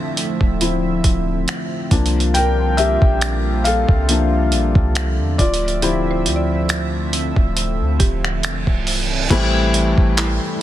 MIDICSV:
0, 0, Header, 1, 7, 480
1, 0, Start_track
1, 0, Key_signature, -1, "minor"
1, 0, Tempo, 869565
1, 1296, Time_signature, 4, 2, 24, 8
1, 5864, End_track
2, 0, Start_track
2, 0, Title_t, "Synth pluck"
2, 0, Program_c, 0, 84
2, 3215, Note_on_c, 0, 67, 70
2, 3371, Note_on_c, 0, 72, 53
2, 3511, Note_on_c, 0, 74, 54
2, 4406, Note_off_c, 0, 67, 0
2, 4413, Note_on_c, 0, 67, 62
2, 4731, Note_off_c, 0, 72, 0
2, 4862, Note_off_c, 0, 74, 0
2, 5352, Note_off_c, 0, 67, 0
2, 5616, Note_on_c, 0, 64, 58
2, 5864, Note_off_c, 0, 64, 0
2, 5864, End_track
3, 0, Start_track
3, 0, Title_t, "Felt piano"
3, 0, Program_c, 1, 0
3, 0, Control_c, 1, 64, 127
3, 0, Note_on_c, 1, 53, 58
3, 0, Note_on_c, 1, 60, 51
3, 0, Note_on_c, 1, 64, 61
3, 0, Note_on_c, 1, 65, 63
3, 0, Note_on_c, 1, 74, 77
3, 73, Note_off_c, 1, 53, 0
3, 74, Note_off_c, 1, 60, 0
3, 76, Note_off_c, 1, 64, 0
3, 337, Note_on_c, 1, 53, 49
3, 339, Note_on_c, 1, 60, 43
3, 341, Note_on_c, 1, 64, 55
3, 554, Note_off_c, 1, 53, 0
3, 555, Note_off_c, 1, 60, 0
3, 556, Note_off_c, 1, 64, 0
3, 1056, Note_on_c, 1, 53, 57
3, 1058, Note_on_c, 1, 58, 54
3, 1061, Control_c, 1, 64, 0
3, 1062, Note_on_c, 1, 62, 65
3, 1063, Note_off_c, 1, 65, 0
3, 1063, Note_off_c, 1, 74, 0
3, 1166, Control_c, 1, 64, 127
3, 1292, Note_on_c, 1, 79, 110
3, 1304, Note_on_c, 1, 70, 86
3, 1517, Note_off_c, 1, 79, 0
3, 1523, Note_off_c, 1, 70, 0
3, 1531, Note_on_c, 1, 76, 107
3, 1543, Note_on_c, 1, 67, 78
3, 1754, Note_off_c, 1, 53, 0
3, 1755, Note_off_c, 1, 58, 0
3, 1757, Note_off_c, 1, 62, 0
3, 1997, Note_off_c, 1, 67, 0
3, 2011, Note_on_c, 1, 77, 102
3, 2024, Note_on_c, 1, 69, 79
3, 2028, Note_off_c, 1, 76, 0
3, 2257, Note_on_c, 1, 53, 50
3, 2259, Note_on_c, 1, 58, 46
3, 2261, Note_on_c, 1, 62, 55
3, 2474, Note_off_c, 1, 53, 0
3, 2475, Note_off_c, 1, 58, 0
3, 2476, Note_off_c, 1, 62, 0
3, 2951, Note_off_c, 1, 77, 0
3, 2958, Note_off_c, 1, 69, 0
3, 2971, Note_on_c, 1, 74, 90
3, 2982, Control_c, 1, 64, 0
3, 2982, Note_on_c, 1, 65, 66
3, 3092, Control_c, 1, 64, 127
3, 3215, Note_on_c, 1, 53, 60
3, 3217, Note_on_c, 1, 60, 51
3, 3220, Note_on_c, 1, 64, 64
3, 3671, Note_off_c, 1, 74, 0
3, 3677, Note_off_c, 1, 65, 0
3, 5113, Note_off_c, 1, 53, 0
3, 5114, Note_off_c, 1, 60, 0
3, 5116, Note_off_c, 1, 64, 0
3, 5133, Note_on_c, 1, 52, 92
3, 5136, Note_on_c, 1, 55, 82
3, 5139, Note_on_c, 1, 57, 83
3, 5143, Note_on_c, 1, 60, 86
3, 5144, Control_c, 1, 64, 0
3, 5145, Note_on_c, 1, 64, 93
3, 5253, Control_c, 1, 64, 127
3, 5742, Note_off_c, 1, 52, 0
3, 5744, Note_off_c, 1, 55, 0
3, 5745, Note_off_c, 1, 57, 0
3, 5747, Note_off_c, 1, 60, 0
3, 5748, Note_off_c, 1, 64, 0
3, 5864, End_track
4, 0, Start_track
4, 0, Title_t, "Analog synth pad"
4, 0, Program_c, 2, 89
4, 0, Note_on_c, 2, 50, 79
4, 0, Note_on_c, 2, 53, 76
4, 0, Note_on_c, 2, 57, 69
4, 0, Note_on_c, 2, 60, 71
4, 0, Note_on_c, 2, 76, 89
4, 1040, Note_off_c, 2, 53, 0
4, 1040, Note_off_c, 2, 57, 0
4, 1041, Note_off_c, 2, 50, 0
4, 1041, Note_off_c, 2, 76, 0
4, 1056, Note_on_c, 2, 55, 72
4, 1056, Note_on_c, 2, 58, 72
4, 1056, Note_on_c, 2, 65, 90
4, 1057, Note_on_c, 2, 50, 78
4, 2953, Note_off_c, 2, 60, 0
4, 2956, Note_off_c, 2, 55, 0
4, 2956, Note_off_c, 2, 58, 0
4, 2956, Note_off_c, 2, 65, 0
4, 2976, Note_on_c, 2, 57, 72
4, 2976, Note_on_c, 2, 76, 90
4, 2977, Note_on_c, 2, 53, 70
4, 2977, Note_on_c, 2, 60, 70
4, 5114, Note_off_c, 2, 50, 0
4, 5114, Note_off_c, 2, 57, 0
4, 5114, Note_off_c, 2, 76, 0
4, 5115, Note_off_c, 2, 53, 0
4, 5115, Note_off_c, 2, 60, 0
4, 5135, Note_on_c, 2, 48, 77
4, 5136, Note_on_c, 2, 52, 75
4, 5136, Note_on_c, 2, 57, 71
4, 5136, Note_on_c, 2, 64, 93
4, 5137, Note_on_c, 2, 55, 74
4, 5864, Note_off_c, 2, 48, 0
4, 5864, Note_off_c, 2, 52, 0
4, 5864, Note_off_c, 2, 55, 0
4, 5864, Note_off_c, 2, 57, 0
4, 5864, Note_off_c, 2, 64, 0
4, 5864, End_track
5, 0, Start_track
5, 0, Title_t, "808-style bass"
5, 0, Program_c, 3, 38
5, 226, Note_on_c, 3, 26, 92
5, 562, Note_off_c, 3, 26, 0
5, 577, Note_on_c, 3, 26, 104
5, 807, Note_off_c, 3, 26, 0
5, 1056, Note_on_c, 3, 36, 101
5, 1643, Note_off_c, 3, 36, 0
5, 1667, Note_on_c, 3, 34, 99
5, 2127, Note_off_c, 3, 34, 0
5, 2146, Note_on_c, 3, 36, 98
5, 2498, Note_on_c, 3, 34, 102
5, 2506, Note_off_c, 3, 36, 0
5, 2620, Note_off_c, 3, 34, 0
5, 2624, Note_on_c, 3, 36, 105
5, 2867, Note_on_c, 3, 40, 97
5, 2875, Note_off_c, 3, 36, 0
5, 2971, Note_off_c, 3, 40, 0
5, 2976, Note_on_c, 3, 26, 108
5, 3458, Note_on_c, 3, 38, 93
5, 3466, Note_off_c, 3, 26, 0
5, 4044, Note_off_c, 3, 38, 0
5, 4066, Note_on_c, 3, 26, 96
5, 4307, Note_on_c, 3, 38, 97
5, 4315, Note_off_c, 3, 26, 0
5, 4411, Note_off_c, 3, 38, 0
5, 4417, Note_on_c, 3, 26, 110
5, 4656, Note_on_c, 3, 28, 94
5, 4664, Note_off_c, 3, 26, 0
5, 4779, Note_off_c, 3, 28, 0
5, 4786, Note_on_c, 3, 24, 96
5, 5122, Note_off_c, 3, 24, 0
5, 5137, Note_on_c, 3, 33, 109
5, 5491, Note_off_c, 3, 33, 0
5, 5508, Note_on_c, 3, 33, 102
5, 5737, Note_off_c, 3, 33, 0
5, 5864, End_track
6, 0, Start_track
6, 0, Title_t, "Reverse cymbal"
6, 0, Program_c, 4, 119
6, 4176, Note_on_c, 4, 60, 83
6, 5136, Note_off_c, 4, 60, 0
6, 5864, End_track
7, 0, Start_track
7, 0, Title_t, "Drums"
7, 95, Note_on_c, 9, 42, 75
7, 150, Note_off_c, 9, 42, 0
7, 225, Note_on_c, 9, 36, 96
7, 280, Note_off_c, 9, 36, 0
7, 336, Note_on_c, 9, 42, 72
7, 391, Note_off_c, 9, 42, 0
7, 575, Note_on_c, 9, 42, 65
7, 576, Note_on_c, 9, 36, 91
7, 630, Note_off_c, 9, 42, 0
7, 631, Note_off_c, 9, 36, 0
7, 815, Note_on_c, 9, 42, 59
7, 822, Note_on_c, 9, 26, 116
7, 871, Note_off_c, 9, 42, 0
7, 877, Note_off_c, 9, 26, 0
7, 1055, Note_on_c, 9, 42, 64
7, 1056, Note_on_c, 9, 36, 98
7, 1110, Note_off_c, 9, 42, 0
7, 1111, Note_off_c, 9, 36, 0
7, 1135, Note_on_c, 9, 42, 51
7, 1190, Note_off_c, 9, 42, 0
7, 1215, Note_on_c, 9, 42, 39
7, 1271, Note_off_c, 9, 42, 0
7, 1296, Note_on_c, 9, 42, 77
7, 1351, Note_off_c, 9, 42, 0
7, 1535, Note_on_c, 9, 42, 66
7, 1590, Note_off_c, 9, 42, 0
7, 1666, Note_on_c, 9, 36, 89
7, 1721, Note_off_c, 9, 36, 0
7, 1774, Note_on_c, 9, 42, 70
7, 1779, Note_on_c, 9, 26, 118
7, 1830, Note_off_c, 9, 42, 0
7, 1834, Note_off_c, 9, 26, 0
7, 2016, Note_on_c, 9, 42, 75
7, 2072, Note_off_c, 9, 42, 0
7, 2145, Note_on_c, 9, 36, 96
7, 2200, Note_off_c, 9, 36, 0
7, 2256, Note_on_c, 9, 42, 77
7, 2312, Note_off_c, 9, 42, 0
7, 2494, Note_on_c, 9, 42, 63
7, 2550, Note_off_c, 9, 42, 0
7, 2624, Note_on_c, 9, 36, 96
7, 2679, Note_off_c, 9, 36, 0
7, 2734, Note_on_c, 9, 42, 57
7, 2741, Note_on_c, 9, 26, 113
7, 2790, Note_off_c, 9, 42, 0
7, 2796, Note_off_c, 9, 26, 0
7, 2976, Note_on_c, 9, 36, 100
7, 2976, Note_on_c, 9, 42, 65
7, 3031, Note_off_c, 9, 36, 0
7, 3031, Note_off_c, 9, 42, 0
7, 3056, Note_on_c, 9, 42, 50
7, 3111, Note_off_c, 9, 42, 0
7, 3135, Note_on_c, 9, 42, 41
7, 3190, Note_off_c, 9, 42, 0
7, 3215, Note_on_c, 9, 42, 73
7, 3270, Note_off_c, 9, 42, 0
7, 3455, Note_on_c, 9, 42, 70
7, 3510, Note_off_c, 9, 42, 0
7, 3694, Note_on_c, 9, 42, 69
7, 3698, Note_on_c, 9, 26, 123
7, 3749, Note_off_c, 9, 42, 0
7, 3753, Note_off_c, 9, 26, 0
7, 3936, Note_on_c, 9, 42, 75
7, 3991, Note_off_c, 9, 42, 0
7, 4065, Note_on_c, 9, 36, 97
7, 4120, Note_off_c, 9, 36, 0
7, 4176, Note_on_c, 9, 42, 77
7, 4231, Note_off_c, 9, 42, 0
7, 4415, Note_on_c, 9, 42, 63
7, 4416, Note_on_c, 9, 36, 100
7, 4470, Note_off_c, 9, 42, 0
7, 4471, Note_off_c, 9, 36, 0
7, 4551, Note_on_c, 9, 26, 65
7, 4607, Note_off_c, 9, 26, 0
7, 4655, Note_on_c, 9, 42, 62
7, 4662, Note_on_c, 9, 26, 115
7, 4711, Note_off_c, 9, 42, 0
7, 4717, Note_off_c, 9, 26, 0
7, 4786, Note_on_c, 9, 36, 83
7, 4842, Note_off_c, 9, 36, 0
7, 4895, Note_on_c, 9, 46, 66
7, 4951, Note_off_c, 9, 46, 0
7, 5136, Note_on_c, 9, 36, 119
7, 5137, Note_on_c, 9, 42, 71
7, 5137, Note_on_c, 9, 49, 102
7, 5191, Note_off_c, 9, 36, 0
7, 5192, Note_off_c, 9, 42, 0
7, 5192, Note_off_c, 9, 49, 0
7, 5377, Note_on_c, 9, 42, 70
7, 5432, Note_off_c, 9, 42, 0
7, 5507, Note_on_c, 9, 36, 94
7, 5562, Note_off_c, 9, 36, 0
7, 5616, Note_on_c, 9, 42, 72
7, 5620, Note_on_c, 9, 39, 122
7, 5671, Note_off_c, 9, 42, 0
7, 5675, Note_off_c, 9, 39, 0
7, 5864, End_track
0, 0, End_of_file